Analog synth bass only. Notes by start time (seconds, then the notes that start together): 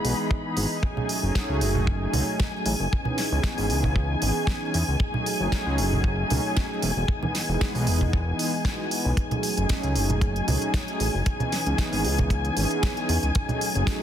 0.05 B1
0.57 G#1
1.23 F#1
1.49 C#2
1.61 F#1
2.13 C#2
2.66 A1
2.80 F#1
3.32 C#2
3.58 G#1
3.70 C#2
4.22 G#1
4.74 E2
4.88 C#2
5.40 F#1
5.66 C#2
5.79 F#1
6.31 C#2
6.83 E1
6.97 E1
7.49 E1
7.75 B1
7.87 E1
9.05 B1
9.58 F#1
9.84 C#2
9.96 F#1
10.48 C#2
11.00 A1
11.14 F#1
11.67 C#2
11.93 G#1
12.05 C#2
12.57 G#1
13.09 E2
13.23 C#2
13.75 F#1